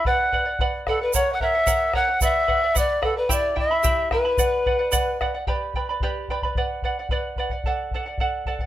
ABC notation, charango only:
X:1
M:2/4
L:1/16
Q:1/4=111
K:Bm
V:1 name="Charango"
[Bdf]2 [Bdf] [df] [Bdf]2 [Bdf] [df] | [^Acf]2 [Acf] [cf] [Acf]2 [Acf] [cf] | [Bdf]2 [Bdf] [df] [Bdf]2 [Bdf] [df] | [EGegb]2 [Eegb] [Eeb] [EGegb]2 [Eegb] [Eeb] |
[Bdf]2 [Bdf] [df] [Bdf]2 [Bdf] [df] | [K:Glyd] [GBdgb]2 [Bdgb] [Bdb] [GBdgb]2 [Bdgb] [Bdb] | [Bdf]2 [Bdf] [df] [Bdf]2 [Bdf] [df] | [Adf]2 [Adf] [df] [Adf]2 [Adf] [df] |]